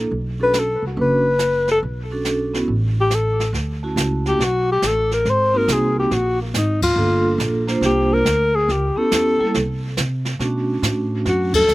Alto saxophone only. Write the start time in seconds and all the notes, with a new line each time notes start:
0.43 B4
0.59 A4
0.87 F#4
1.01 B4
1.72 A4
3.01 G4
3.14 A4
4.28 G4
4.44 F#4
4.72 G4
4.87 A4
5.13 A#4
5.30 C5
5.57 A#4
5.73 G#4
5.99 G4
6.14 F#4
6.42 A#3
6.57 D#4
6.83 F4
7.86 G4
8.13 A#4
8.55 G#4
8.71 G4
8.97 A4
11.29 F#4
11.55 A4